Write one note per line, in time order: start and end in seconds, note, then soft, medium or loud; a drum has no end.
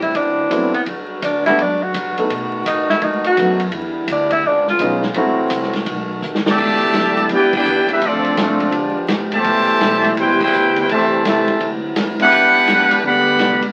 0.00 0.13 G1 medium
0.00 0.14 G3 medium
0.00 0.14 A3 medium
0.00 0.83 C4 medium
0.00 0.13 E4 medium
0.00 0.18 E4 loud
0.00 ride soft
0.14 0.49 D2 medium
0.14 0.83 F#3 medium
0.14 3.69 B3 medium
0.14 0.74 D4 medium
0.14 0.86 E4 medium
0.14 kick soft
0.14 ride medium
0.50 0.72 F#2 medium
0.50 0.71 F#3 medium
0.50 0.71 A3 medium
0.50 0.71 B3 medium
0.50 0.72 C4 medium
0.50 0.72 E4 medium
0.50 kick soft
0.50 hi-hat pedal medium
0.50 ride medium
0.74 0.82 B3 medium
0.74 muted upright bass stroke soft
0.74 ride medium
0.84 1.21 G2 medium
0.84 2.27 D3 medium
0.84 2.27 F#3 medium
0.84 3.69 F#4 medium
0.84 kick soft
0.84 ride medium
1.22 1.57 D2 medium
1.22 1.45 D4 medium
1.22 kick soft
1.22 hi-hat pedal medium
1.22 ride medium
1.46 1.57 G3 medium
1.46 1.57 A3 medium
1.46 1.58 B3 medium
1.46 1.58 D4 medium
1.46 1.63 E4 loud
1.46 1.58 F#4 medium
1.46 snare soft
1.46 ride soft
1.58 1.93 F#2 medium
1.58 1.84 D4 loud
1.58 kick soft
1.58 ride medium
1.83 2.18 F#4 loud
1.94 2.15 G2 loud
1.94 kick soft
1.94 hi-hat pedal medium
1.94 ride medium
2.17 2.29 F#3 medium
2.17 2.29 A3 medium
2.17 2.29 B3 medium
2.17 2.29 D#4 medium
2.17 2.29 A4 medium
2.17 muted upright bass stroke soft
2.17 ride medium
2.28 2.64 B2 medium
2.28 3.70 D#3 medium
2.28 3.70 A3 medium
2.28 kick soft
2.28 ride medium
2.65 3.00 A2 medium
2.65 2.88 D#4 medium
2.65 kick soft
2.65 hi-hat pedal medium
2.65 ride medium
2.89 3.05 E4 loud
2.89 snare medium
3.01 3.23 G2 medium
3.01 3.25 D#4 loud
3.01 kick soft
3.01 ride medium
3.23 3.59 F#4 loud
3.23 muted upright bass stroke soft
3.23 ride medium
3.37 3.72 F#2 loud
3.37 3.58 F#3 medium
3.37 3.58 A3 medium
3.37 3.58 B3 medium
3.37 3.58 D#4 soft
3.37 3.59 F#4 medium
3.37 kick soft
3.37 hi-hat pedal medium
3.37 ride medium
3.60 ride medium
3.72 4.07 E2 medium
3.72 4.43 D3 medium
3.72 4.43 G3 medium
3.72 5.14 B3 medium
3.72 4.43 E4 medium
3.72 kick soft
3.72 ride medium
4.08 4.43 D2 loud
4.08 kick soft
4.08 hi-hat pedal medium
4.08 ride medium
4.12 4.32 D4 medium
4.30 4.49 E4 loud
4.30 kick medium
4.30 ride medium
4.44 4.78 C#2 medium
4.44 5.15 C#3 medium
4.44 5.15 G#3 medium
4.44 4.69 D4 loud
4.44 5.15 F4 medium
4.44 kick soft
4.67 5.02 F4 medium
4.67 snare soft
4.79 5.14 B1 loud
4.79 5.01 G#3 medium
4.79 5.01 B3 medium
4.79 5.02 C#4 medium
4.79 5.01 D#4 medium
4.79 5.02 F4 medium
4.79 kick soft
4.79 hi-hat pedal medium
4.79 ride medium
5.03 snare medium
5.14 5.49 A1 medium
5.14 5.87 E3 medium
5.14 5.70 F#3 medium
5.14 5.70 A3 medium
5.14 5.86 A3 medium
5.14 5.70 C4 medium
5.14 5.87 C4 medium
5.14 5.70 E4 medium
5.14 6.42 F#4 medium
5.14 5.71 F#4 medium
5.14 kick soft
5.14 ride medium
5.50 5.86 C2 loud
5.50 kick soft
5.50 hi-hat pedal medium
5.50 ride medium
5.63 snare soft
5.73 snare medium
5.73 ride medium
5.86 6.21 B1 medium
5.86 6.41 D#3 medium
5.86 6.42 A3 medium
5.86 6.41 B3 medium
5.86 kick soft
5.86 ride medium
6.22 6.57 D#2 loud
6.22 hi-hat pedal medium
6.35 snare medium
6.46 7.27 B2 loud
6.46 7.27 D3 loud
6.46 7.27 A3 loud
6.46 7.28 G4 loud
6.46 7.28 D5 loud
6.46 7.28 E5 loud
6.46 7.28 A5 loud
6.46 snare loud
6.58 6.93 E2 medium
6.58 8.71 D3 medium
6.58 8.01 B3 medium
6.58 8.00 E4 medium
6.58 8.01 G4 medium
6.58 kick medium
6.58 crash medium
6.93 7.29 F#2 medium
6.93 kick soft
6.93 snare medium
6.93 hi-hat pedal medium
6.93 ride medium
7.17 ride medium
7.29 7.65 G2 medium
7.29 7.52 B3 medium
7.29 7.52 D4 medium
7.29 7.53 G4 medium
7.29 kick soft
7.29 ride medium
7.34 7.54 E4 loud
7.34 7.54 B4 loud
7.34 7.54 D5 loud
7.34 7.54 G5 loud
7.53 7.88 B3 medium
7.53 7.88 D4 loud
7.53 7.88 E4 medium
7.53 7.88 G4 medium
7.53 7.88 B4 medium
7.53 7.88 G5 loud
7.53 kick loud
7.53 crash medium
7.57 7.89 D5 medium
7.65 7.87 E2 medium
7.65 hi-hat pedal medium
7.88 8.03 G3 medium
7.88 8.02 B3 medium
7.88 8.03 D4 medium
7.88 8.03 E4 medium
7.88 8.03 G4 medium
7.88 8.03 E5 loud
7.88 muted upright bass stroke soft
7.88 ride medium
7.93 8.04 B4 medium
8.01 8.23 D2 loud
8.01 8.36 F3 medium
8.01 8.73 A3 medium
8.01 8.36 A3 medium
8.01 8.73 C4 medium
8.01 8.37 D4 medium
8.01 8.73 F4 medium
8.01 8.39 A4 medium
8.01 kick soft
8.01 ride medium
8.06 8.40 C4 medium
8.06 8.40 F4 medium
8.06 8.40 D5 loud
8.24 muted upright bass stroke soft
8.24 ride medium
8.37 8.72 C2 medium
8.37 9.05 F3 loud
8.37 8.71 A3 medium
8.37 9.06 D4 medium
8.37 kick soft
8.37 snare medium
8.37 hi-hat pedal medium
8.37 ride medium
8.41 8.73 C4 medium
8.41 9.07 F4 medium
8.41 8.73 A4 medium
8.41 9.07 D5 medium
8.60 ride medium
8.71 8.95 G1 medium
8.71 9.44 F3 medium
8.71 9.43 G#3 medium
8.71 9.44 B3 medium
8.71 9.44 G4 medium
8.71 kick soft
8.71 ride medium
8.95 muted upright bass stroke soft
9.08 9.44 G#1 loud
9.08 kick soft
9.08 snare medium
9.08 hi-hat pedal medium
9.08 ride medium
9.32 10.13 B2 medium
9.32 10.13 E3 medium
9.32 10.13 A3 medium
9.32 10.14 G4 loud
9.32 10.14 C5 loud
9.32 10.14 E5 loud
9.32 10.14 A5 loud
9.32 ride medium
9.44 9.66 C2 medium
9.44 10.87 B2 medium
9.44 11.58 E3 medium
9.44 11.58 G3 medium
9.44 11.58 E4 loud
9.44 kick soft
9.44 ride medium
9.68 muted upright bass stroke soft
9.81 10.16 B1 medium
9.81 kick soft
9.81 snare medium
9.81 hi-hat pedal medium
9.81 ride medium
10.04 ride medium
10.17 10.52 C2 medium
10.17 10.41 B3 medium
10.17 10.41 E4 medium
10.17 10.42 E4 medium
10.17 10.40 G4 medium
10.17 10.41 B4 medium
10.17 10.41 C5 medium
10.17 10.41 G5 loud
10.17 kick soft
10.17 ride medium
10.40 10.74 B2 medium
10.40 10.75 E4 medium
10.40 10.75 G4 medium
10.40 10.75 B4 loud
10.40 10.75 C5 medium
10.40 10.75 G5 loud
10.40 kick loud
10.40 crash medium
10.53 10.87 D2 loud
10.53 hi-hat pedal medium
10.76 10.89 B3 medium
10.76 10.88 E4 medium
10.76 10.88 G4 medium
10.76 10.90 C5 medium
10.76 ride medium
10.80 10.90 E4 medium
10.80 10.90 B4 medium
10.80 10.90 G5 medium
10.87 11.23 E2 medium
10.87 11.23 C3 loud
10.87 11.23 E3 medium
10.87 11.59 A3 medium
10.87 11.23 A3 loud
10.87 kick soft
10.87 ride medium
10.92 11.24 G4 medium
10.92 11.24 C5 medium
10.92 11.24 E5 medium
10.92 11.24 A5 loud
11.25 11.46 C2 medium
11.25 11.69 C3 medium
11.25 11.69 E3 medium
11.25 11.69 A3 medium
11.25 11.70 G4 medium
11.25 11.70 C5 medium
11.25 11.70 A5 medium
11.25 kick soft
11.25 snare medium
11.25 hi-hat pedal medium
11.25 ride medium
11.29 11.71 E5 medium
11.48 muted upright bass stroke soft
11.48 kick medium
11.48 ride medium
11.59 11.95 D2 medium
11.59 12.31 C3 medium
11.59 12.30 F#3 medium
11.59 13.72 B3 medium
11.59 12.30 E4 medium
11.59 kick soft
11.59 ride medium
11.96 12.17 E2 medium
11.96 kick soft
11.96 snare medium
11.96 hi-hat pedal medium
11.96 ride medium
12.19 12.99 B3 medium
12.19 12.99 D4 medium
12.19 13.00 E4 medium
12.19 13.01 G4 medium
12.19 13.01 F#5 loud
12.19 muted upright bass stroke soft
12.19 ride medium
12.23 13.01 D4 medium
12.23 13.01 B4 medium
12.32 12.67 G2 medium
12.32 13.72 D3 medium
12.32 13.72 G3 medium
12.32 kick soft
12.32 ride medium
12.67 12.89 F#2 medium
12.67 kick soft
12.67 snare medium
12.67 hi-hat pedal medium
12.67 ride medium
12.90 muted upright bass stroke soft
12.90 ride medium
13.03 13.38 D2 medium
13.03 13.63 D3 loud
13.03 13.63 G3 loud
13.03 13.63 B3 medium
13.03 13.63 G4 loud
13.03 13.63 D5 loud
13.03 13.63 F#5 loud
13.03 13.63 B5 loud
13.03 kick soft
13.39 13.61 C2 loud
13.39 kick soft
13.39 snare medium
13.39 hi-hat pedal medium
13.39 ride medium
13.62 muted upright bass stroke soft
13.62 ride medium